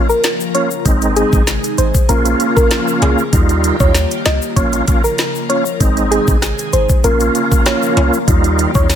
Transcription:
Already playing: C#3 F3 A#3 F4 A#4
0.09 A#4, shaker
0.24 snare, closed hi-hat, shaker
0.40 shaker
0.54 A#3 C#4 F4 C#5, closed hi-hat
0.71 shaker
0.85 G#1 C3 D#3 G#3 C4 D#4 G#4, kick, closed hi-hat, shaker
1.02 closed hi-hat, shaker
1.16 G#4, closed hi-hat, shaker
1.33 G#1, kick, shaker
1.47 snare, closed hi-hat, shaker
1.64 closed hi-hat, shaker
1.78 G#1 C5, closed hi-hat, shaker
1.95 kick, shaker
2.09 A#1 C#3 F3 A#3 C#4 F4 A#4, closed hi-hat, shaker
2.25 closed hi-hat, shaker
2.40 closed hi-hat, shaker
2.56 A#4, kick, shaker
2.71 snare, closed hi-hat, shaker
2.88 shaker
3.02 C2 G#4, closed hi-hat, high timbale
3.18 shaker
3.32 D#2 D#3 G3 D#4 F4 G4, kick, closed hi-hat, shaker
3.49 closed hi-hat, shaker
3.64 closed hi-hat, shaker
3.80 D#2 G3 D#4 F4 C#5, kick, shaker
3.94 snare, closed hi-hat, shaker
4.11 closed hi-hat, shaker
4.26 C2 D#5, snare, closed hi-hat, shaker
4.42 shaker
4.56 A#1 C#3 F3 A#3 C#4 F4 A#4 C#5, kick, closed hi-hat, shaker
4.73 closed hi-hat, shaker
4.87 A#3 C#4 F4, kick, closed hi-hat, shaker
5.04 A#4, shaker
5.18 snare, closed hi-hat, shaker
5.35 shaker
5.49 A#3 C#4 F4 C#5, closed hi-hat
5.66 shaker
5.80 G#1 C3 D#3 G#3 C4 D#4 G#4, kick, closed hi-hat, shaker
5.97 closed hi-hat, shaker
6.11 G#4, closed hi-hat, shaker
6.28 G#1, kick, shaker
6.42 cross-stick, snare, closed hi-hat, shaker
6.58 closed hi-hat, shaker
6.73 G#1 C5, closed hi-hat, shaker
6.89 kick, shaker
7.04 A#1 C#3 F3 A#3 C#4 F4 A#4, closed hi-hat, shaker
7.20 closed hi-hat, shaker
7.35 closed hi-hat, shaker
7.52 kick, shaker
7.66 C#5, cross-stick, snare, closed hi-hat, shaker
7.82 shaker
7.97 C2, closed hi-hat, high timbale
8.13 shaker
8.27 D#2 D#3 G3 D#4 F4 G4, kick, closed hi-hat, shaker
8.44 closed hi-hat, shaker
8.59 closed hi-hat, shaker
8.75 D#2 G3 D#4 F4 C#5, kick, shaker
8.89 snare, closed hi-hat, shaker

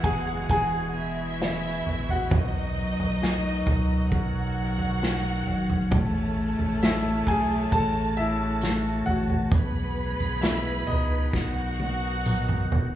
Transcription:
Already playing: B2 E3 G#3 B3 E4 F#4 G#4 F#5
0.04 F#1 B3 G#4 G#5, kick, floor tom
0.49 E1 E3 F#4 G#4 G#5, kick, floor tom
0.94 B3 E4 E5
1.39 E3, snare
1.86 A1 B3, floor tom
2.09 F#4 F#5, floor tom
2.31 B1 B2 D#3 F#3 D#4 D#5, kick, floor tom
2.77 F#3
3.00 B1, floor tom
3.22 D#4, snare
3.66 C#2 F#3, kick, floor tom
4.11 B1 B2 C#4 F#4 F#5, kick, floor tom
4.57 F#3
4.78 floor tom
5.02 D#4, snare
5.47 G#1 F#3, floor tom
5.70 floor tom
5.91 A1 A2 C#3 E3 A3 E4 A5, kick, floor tom
6.39 A3
6.59 A1, floor tom
6.83 A3 E4 E5, snare, tambourine
7.27 B1 A3 G#4 G#5, kick, floor tom
7.71 A1 A3 F#4 A5, kick, floor tom
7.75 A4
8.17 A3 E4 E5
8.61 A3, snare, tambourine
9.06 A1 A3 F#4 F#5, floor tom
9.30 floor tom
9.51 B1 G#2 B2 B3 G#4 B4 B5, kick, floor tom
9.96 B3
10.20 B1, floor tom
10.41 B3 E4 E5, snare, tambourine
10.87 C#2 B3 D#4 D#5, floor tom
11.32 B1 B2 D#3 F#3 B3 D#4 F#4 F#5, kick, snare
11.79 B3, high tom
12.26 B3, mid tom, tambourine
12.49 mid tom
12.72 D#1 B3, floor tom

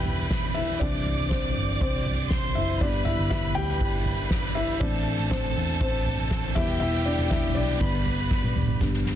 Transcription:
Already playing: E1 E3 G3 B3 D4 E4 G4 B4 D5 E5 G5 B5
0.05 floor tom, ride
0.30 kick, snare, ride
0.54 E4 E5, ride
0.80 C2 E3 G3 C4 D4 D5 D6, kick, ride
1.06 floor tom, ride
1.19 C2
1.29 C4 C5, kick, snare
1.56 G1, ride
1.80 C2 C4 C5, kick, ride
2.06 floor tom, ride
2.30 C5 C6, kick, snare, ride
2.55 F#1 E4 E5, ride
2.80 G1 D3 G3 B3 D4 B4 D5 B5, kick, ride
3.05 E4 E5, floor tom, ride
3.19 G1
3.30 E4 E5, kick, snare, ride
3.55 D2 G4 G5, ride
3.81 G1, kick, ride
4.05 B4 B5, floor tom, ride
4.31 kick, snare, ride
4.55 E4 E5, ride
4.80 A1 E3 A3 C4 D4 A4 D5 A5, kick, ride
5.06 ride
5.18 A1, ride
5.30 C4 C5, kick, snare, ride
5.56 E2, ride
5.81 A1 C4 C5, kick, ride
6.06 floor tom, ride
6.31 kick, snare, ride
6.55 E1 E3 G3 B3 E4 G4 E5 G5, kick, ride
6.80 E1 E4 E5, ride
7.05 D4 D5, ride
7.18 E1, ride
7.30 E4 E5, kick, snare, ride
7.55 B1 D4 D5, ride
7.80 G1 D3 G3 B3 B4 B5, kick, ride
7.94 ride
8.05 floor tom, ride
8.31 kick, snare
8.44 high tom
8.56 mid tom
8.68 floor tom
8.81 G1 G3 B3 D4, kick, snare
8.93 snare
9.06 snare

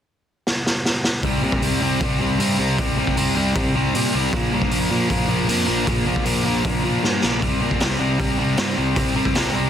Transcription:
0.47 snare
0.66 snare
0.85 snare
1.04 snare
1.23 C2 C3 G3 C4, kick, open hi-hat
1.41 A#2 C3 G3 C4
1.52 kick
1.62 C2 C3 G3 C4, open hi-hat
1.81 C2 C3 G3 C4
2.00 C2 C3 G3 C4, kick, open hi-hat
2.20 C2 C3 G3 C4
2.38 G2 C3 G3 C4, open hi-hat
2.58 C2 C3 G3 C4
2.78 C2 C3 G3 C4, kick, open hi-hat
2.97 C2 C3 G3 C4
3.07 kick
3.16 C2 C3 G3 C4, open hi-hat
3.36 C2 C3 G3 C4
3.55 C2 C3 G3 C4, kick, open hi-hat
3.75 C2 C3 G3 C4
3.94 A#2 C3 G3 C4, open hi-hat
4.14 C2 C3 G3 C4
4.32 A#1 A#2 F3 A#3, kick, open hi-hat
4.52 G2 A#2 F3 A#3
4.62 kick
4.71 A#1 A#2 F3 A#3, open hi-hat
4.91 A#1 A#2 F3 A#3
5.09 A#1 A#2 F3 A#3, kick, open hi-hat
5.28 A#1 A#2 F3 A#3
5.48 F2 A#2 F3 A#3, open hi-hat
5.67 A#1 A#2 F3 A#3
5.87 A#1 A#2 F3 A#3, kick, open hi-hat
6.06 A#1 A#2 F3 A#3
6.16 kick
6.25 A#1 A#2 F3 A#3, open hi-hat
6.44 A#1 A#2 F3 A#3
6.64 A#1 A#2 F3 A#3, kick, open hi-hat
6.84 A#1 A#2 F3 A#3
7.03 G2 A#2 F3 A#3, snare
7.22 A#1 A#2 F3 A#3, snare
7.42 C2 C3 G3 C4, kick, open hi-hat
7.61 A#2 C3 G3 C4
7.71 kick
7.80 C2 C3 G3 C4, snare, open hi-hat
8.00 C2 C3 G3 C4
8.19 C2 C3 G3 C4, kick, open hi-hat
8.38 C2 C3 G3 C4
8.57 G2 C3 G3 C4, snare, open hi-hat
8.77 C2 C3 G3 C4
8.96 C2 C3 G3 C4, kick, open hi-hat
9.15 C2 C3 G3 C4
9.25 kick
9.35 C2 C3 G3 C4, snare, open hi-hat
9.54 C2 C3 G3 C4

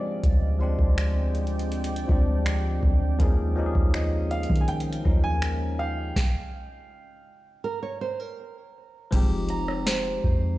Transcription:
Already playing: F3 G#3 C4 D4 G4 C#5 D5 G5
0.24 D2, kick, closed hi-hat
0.59 F3 G#3 C4 D4 C6
0.63 G4
0.79 D2, kick
0.98 finger snap, closed hi-hat
1.35 closed hi-hat
1.47 closed hi-hat
1.59 closed hi-hat
1.72 closed hi-hat
1.84 closed hi-hat
1.96 closed hi-hat
2.07 D2 F3 G#3 C4 D4, kick
2.12 G4
2.46 finger snap, closed hi-hat
2.83 D2, kick
3.18 D#2 F3 A#3 C#4 D#4 D#5 F5, kick, closed hi-hat
3.23 G#4
3.55 F3 A#3 C#4 D#4
3.59 G4
3.66 G#4
3.75 D#2, kick
3.94 D#5, finger snap, closed hi-hat
4.31 F5, closed hi-hat
4.43 closed hi-hat
4.50 D#3, kick
4.56 closed hi-hat
4.61 G#5
4.68 G5, closed hi-hat
4.80 closed hi-hat
4.93 closed hi-hat
5.04 D#2 F3 A#3 C#4 D#4, kick
5.08 A#4
5.24 G#5
5.42 finger snap, closed hi-hat
5.79 F5 G5
6.16 kick, snare
7.64 A#4 A#5
7.83 C#5
8.01 C5
8.20 A#4
9.11 F1 F3 G#3 C4 D#4, kick, closed hi-hat, crash
9.15 G4
9.49 A#5, closed hi-hat
9.68 cross-stick
9.86 C5, snare, closed hi-hat
10.24 F2, kick

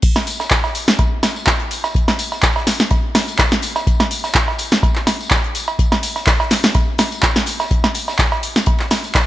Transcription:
0.02 kick, closed hi-hat, tambourine, crash
0.16 snare, cowbell
0.27 closed hi-hat, open hi-hat, tambourine
0.40 snare, tambourine, cowbell
0.50 kick, snare, clap, closed hi-hat, tambourine
0.64 snare, cowbell
0.75 closed hi-hat, open hi-hat, tambourine
0.88 snare, tambourine
0.99 kick, closed hi-hat, cowbell
1.23 snare, closed hi-hat, open hi-hat, tambourine, cowbell
1.36 tambourine
1.46 kick, snare, clap, closed hi-hat, tambourine, cowbell
1.60 closed hi-hat
1.71 closed hi-hat, open hi-hat, tambourine
1.84 snare, tambourine, cowbell
1.94 kick, closed hi-hat, tambourine
2.08 snare, cowbell
2.19 closed hi-hat, open hi-hat, tambourine
2.32 snare, tambourine, cowbell
2.42 kick, snare, clap, closed hi-hat
2.56 snare, cowbell
2.67 snare, closed hi-hat, open hi-hat, tambourine
2.80 snare, tambourine
2.91 kick, closed hi-hat, tambourine, cowbell
3.15 snare, closed hi-hat, open hi-hat, tambourine, cowbell
3.28 closed hi-hat, tambourine
3.38 kick, snare, clap, closed hi-hat, tambourine, cowbell
3.52 snare
3.62 closed hi-hat, open hi-hat, tambourine
3.75 snare, tambourine, cowbell
3.87 kick, closed hi-hat, tambourine
4.00 snare, cowbell
4.11 closed hi-hat, open hi-hat, tambourine
4.24 snare, tambourine, cowbell
4.34 kick, snare, clap, closed hi-hat
4.48 snare, cowbell
4.59 closed hi-hat, open hi-hat, tambourine
4.71 snare, tambourine
4.83 kick, closed hi-hat, tambourine, cowbell
4.95 snare, clap
5.07 snare, closed hi-hat, open hi-hat, tambourine, cowbell
5.21 tambourine
5.31 kick, snare, clap, closed hi-hat, tambourine, cowbell
5.44 closed hi-hat
5.55 closed hi-hat, open hi-hat, tambourine
5.68 tambourine, cowbell
5.79 kick, closed hi-hat, tambourine
5.92 snare, cowbell
6.03 closed hi-hat, open hi-hat, tambourine
6.15 snare, tambourine, cowbell
6.27 kick, snare, clap, closed hi-hat
6.39 snare, cowbell
6.51 snare, closed hi-hat, open hi-hat, tambourine
6.63 snare, tambourine
6.75 kick, closed hi-hat, tambourine, cowbell
6.98 snare, closed hi-hat, open hi-hat, tambourine, cowbell
7.12 closed hi-hat, tambourine
7.22 kick, snare, clap, closed hi-hat, tambourine, cowbell
7.36 snare
7.46 closed hi-hat, open hi-hat, tambourine
7.60 snare, tambourine, cowbell
7.71 kick, closed hi-hat, tambourine
7.84 snare, cowbell
7.95 closed hi-hat, open hi-hat, tambourine
8.08 snare, tambourine, cowbell
8.18 kick, snare, clap, closed hi-hat, tambourine
8.32 snare, cowbell
8.43 closed hi-hat, open hi-hat, tambourine
8.56 snare, tambourine
8.66 kick, closed hi-hat, tambourine, cowbell
8.80 snare, clap
8.91 snare, closed hi-hat, open hi-hat, tambourine, cowbell
9.04 tambourine
9.14 kick, snare, clap, closed hi-hat, tambourine, cowbell

